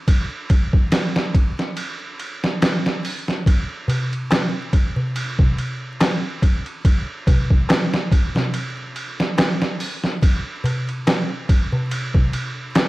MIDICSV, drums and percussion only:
0, 0, Header, 1, 3, 480
1, 0, Start_track
1, 0, Tempo, 845070
1, 43, Time_signature, 4, 2, 24, 8
1, 7319, End_track
2, 0, Start_track
2, 0, Title_t, "Darbuka"
2, 2203, Note_on_c, 9, 64, 74
2, 2260, Note_off_c, 9, 64, 0
2, 2446, Note_on_c, 9, 63, 78
2, 2503, Note_off_c, 9, 63, 0
2, 2819, Note_on_c, 9, 64, 57
2, 2875, Note_off_c, 9, 64, 0
2, 3063, Note_on_c, 9, 64, 54
2, 3119, Note_off_c, 9, 64, 0
2, 3411, Note_on_c, 9, 63, 81
2, 3468, Note_off_c, 9, 63, 0
2, 4131, Note_on_c, 9, 64, 78
2, 4188, Note_off_c, 9, 64, 0
2, 4368, Note_on_c, 9, 63, 80
2, 4424, Note_off_c, 9, 63, 0
2, 4742, Note_on_c, 9, 64, 51
2, 4799, Note_off_c, 9, 64, 0
2, 5327, Note_on_c, 9, 63, 67
2, 5383, Note_off_c, 9, 63, 0
2, 6043, Note_on_c, 9, 64, 71
2, 6100, Note_off_c, 9, 64, 0
2, 6287, Note_on_c, 9, 63, 71
2, 6344, Note_off_c, 9, 63, 0
2, 6660, Note_on_c, 9, 64, 65
2, 6717, Note_off_c, 9, 64, 0
2, 6896, Note_on_c, 9, 64, 49
2, 6953, Note_off_c, 9, 64, 0
2, 7244, Note_on_c, 9, 63, 74
2, 7301, Note_off_c, 9, 63, 0
2, 7319, End_track
3, 0, Start_track
3, 0, Title_t, "Drums"
3, 43, Note_on_c, 9, 36, 106
3, 44, Note_on_c, 9, 51, 86
3, 100, Note_off_c, 9, 36, 0
3, 101, Note_off_c, 9, 51, 0
3, 283, Note_on_c, 9, 51, 69
3, 284, Note_on_c, 9, 36, 100
3, 339, Note_off_c, 9, 51, 0
3, 341, Note_off_c, 9, 36, 0
3, 416, Note_on_c, 9, 36, 94
3, 473, Note_off_c, 9, 36, 0
3, 521, Note_on_c, 9, 51, 86
3, 524, Note_on_c, 9, 38, 109
3, 578, Note_off_c, 9, 51, 0
3, 580, Note_off_c, 9, 38, 0
3, 659, Note_on_c, 9, 38, 54
3, 716, Note_off_c, 9, 38, 0
3, 764, Note_on_c, 9, 36, 97
3, 765, Note_on_c, 9, 51, 61
3, 821, Note_off_c, 9, 36, 0
3, 822, Note_off_c, 9, 51, 0
3, 904, Note_on_c, 9, 38, 42
3, 960, Note_off_c, 9, 38, 0
3, 1003, Note_on_c, 9, 51, 84
3, 1060, Note_off_c, 9, 51, 0
3, 1247, Note_on_c, 9, 51, 69
3, 1304, Note_off_c, 9, 51, 0
3, 1384, Note_on_c, 9, 38, 47
3, 1441, Note_off_c, 9, 38, 0
3, 1489, Note_on_c, 9, 51, 85
3, 1491, Note_on_c, 9, 38, 109
3, 1546, Note_off_c, 9, 51, 0
3, 1548, Note_off_c, 9, 38, 0
3, 1625, Note_on_c, 9, 38, 44
3, 1682, Note_off_c, 9, 38, 0
3, 1731, Note_on_c, 9, 46, 79
3, 1788, Note_off_c, 9, 46, 0
3, 1864, Note_on_c, 9, 38, 37
3, 1921, Note_off_c, 9, 38, 0
3, 1967, Note_on_c, 9, 36, 107
3, 1972, Note_on_c, 9, 51, 85
3, 2024, Note_off_c, 9, 36, 0
3, 2029, Note_off_c, 9, 51, 0
3, 2212, Note_on_c, 9, 51, 72
3, 2269, Note_off_c, 9, 51, 0
3, 2345, Note_on_c, 9, 51, 46
3, 2402, Note_off_c, 9, 51, 0
3, 2451, Note_on_c, 9, 51, 88
3, 2453, Note_on_c, 9, 38, 103
3, 2508, Note_off_c, 9, 51, 0
3, 2510, Note_off_c, 9, 38, 0
3, 2687, Note_on_c, 9, 36, 88
3, 2687, Note_on_c, 9, 51, 64
3, 2744, Note_off_c, 9, 36, 0
3, 2744, Note_off_c, 9, 51, 0
3, 2929, Note_on_c, 9, 51, 88
3, 2986, Note_off_c, 9, 51, 0
3, 3060, Note_on_c, 9, 36, 101
3, 3117, Note_off_c, 9, 36, 0
3, 3172, Note_on_c, 9, 51, 66
3, 3228, Note_off_c, 9, 51, 0
3, 3412, Note_on_c, 9, 51, 89
3, 3414, Note_on_c, 9, 38, 119
3, 3469, Note_off_c, 9, 51, 0
3, 3471, Note_off_c, 9, 38, 0
3, 3649, Note_on_c, 9, 36, 96
3, 3651, Note_on_c, 9, 51, 69
3, 3706, Note_off_c, 9, 36, 0
3, 3708, Note_off_c, 9, 51, 0
3, 3783, Note_on_c, 9, 51, 45
3, 3840, Note_off_c, 9, 51, 0
3, 3890, Note_on_c, 9, 36, 108
3, 3890, Note_on_c, 9, 51, 83
3, 3946, Note_off_c, 9, 36, 0
3, 3947, Note_off_c, 9, 51, 0
3, 4130, Note_on_c, 9, 36, 107
3, 4132, Note_on_c, 9, 51, 72
3, 4187, Note_off_c, 9, 36, 0
3, 4189, Note_off_c, 9, 51, 0
3, 4262, Note_on_c, 9, 36, 96
3, 4319, Note_off_c, 9, 36, 0
3, 4372, Note_on_c, 9, 51, 91
3, 4374, Note_on_c, 9, 38, 118
3, 4429, Note_off_c, 9, 51, 0
3, 4431, Note_off_c, 9, 38, 0
3, 4508, Note_on_c, 9, 38, 50
3, 4565, Note_off_c, 9, 38, 0
3, 4610, Note_on_c, 9, 36, 99
3, 4614, Note_on_c, 9, 51, 68
3, 4667, Note_off_c, 9, 36, 0
3, 4670, Note_off_c, 9, 51, 0
3, 4748, Note_on_c, 9, 38, 42
3, 4805, Note_off_c, 9, 38, 0
3, 4849, Note_on_c, 9, 51, 85
3, 4906, Note_off_c, 9, 51, 0
3, 5088, Note_on_c, 9, 51, 65
3, 5145, Note_off_c, 9, 51, 0
3, 5225, Note_on_c, 9, 38, 49
3, 5282, Note_off_c, 9, 38, 0
3, 5328, Note_on_c, 9, 51, 90
3, 5331, Note_on_c, 9, 38, 105
3, 5385, Note_off_c, 9, 51, 0
3, 5387, Note_off_c, 9, 38, 0
3, 5462, Note_on_c, 9, 38, 44
3, 5519, Note_off_c, 9, 38, 0
3, 5568, Note_on_c, 9, 46, 78
3, 5624, Note_off_c, 9, 46, 0
3, 5701, Note_on_c, 9, 38, 39
3, 5758, Note_off_c, 9, 38, 0
3, 5808, Note_on_c, 9, 36, 113
3, 5810, Note_on_c, 9, 51, 86
3, 5865, Note_off_c, 9, 36, 0
3, 5866, Note_off_c, 9, 51, 0
3, 6052, Note_on_c, 9, 51, 70
3, 6109, Note_off_c, 9, 51, 0
3, 6183, Note_on_c, 9, 51, 44
3, 6240, Note_off_c, 9, 51, 0
3, 6288, Note_on_c, 9, 51, 86
3, 6290, Note_on_c, 9, 38, 108
3, 6345, Note_off_c, 9, 51, 0
3, 6347, Note_off_c, 9, 38, 0
3, 6527, Note_on_c, 9, 36, 99
3, 6528, Note_on_c, 9, 51, 69
3, 6584, Note_off_c, 9, 36, 0
3, 6585, Note_off_c, 9, 51, 0
3, 6767, Note_on_c, 9, 51, 92
3, 6824, Note_off_c, 9, 51, 0
3, 6898, Note_on_c, 9, 36, 92
3, 6955, Note_off_c, 9, 36, 0
3, 7005, Note_on_c, 9, 51, 72
3, 7062, Note_off_c, 9, 51, 0
3, 7243, Note_on_c, 9, 51, 82
3, 7246, Note_on_c, 9, 38, 116
3, 7300, Note_off_c, 9, 51, 0
3, 7302, Note_off_c, 9, 38, 0
3, 7319, End_track
0, 0, End_of_file